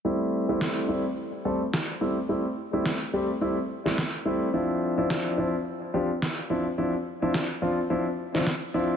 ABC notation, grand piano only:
X:1
M:4/4
L:1/16
Q:"Swing 16ths" 1/4=107
K:Am
V:1 name="Grand piano"
[G,A,CE]3 [G,A,CE]3 [G,A,CE] z3 [G,A,CA] z3 [G,A,CE] z | [G,A,CE] z2 [G,A,CE] z2 [G,A,CG] z [G,A,CE] z2 [G,A,CE] z2 [G,A,CE] z | [F,CDE]3 [F,CDE]3 [F,CDE] z3 [F,CDG] z3 [F,CDE] z | [F,CDE] z2 [F,CDE] z2 [F,CDF] z [F,CDE] z2 [F,CDE] z2 [F,CDE] z |]